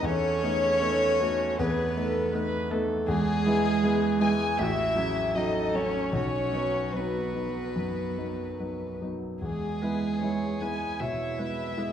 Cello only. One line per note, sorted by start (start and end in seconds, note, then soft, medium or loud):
0.05 1.62 C#4 loud
1.60 2.71 B3 medium
3.09 4.25 G#3 loud
4.23 4.62 G#4 loud
4.61 5.38 E4 loud
5.36 5.77 D#4 medium
5.76 6.15 C#4 medium
6.16 6.98 C#4 medium
6.97 9.03 B3 medium
9.44 10.57 G#3 medium
10.63 11.03 G#4 medium
11.02 11.92 E4 medium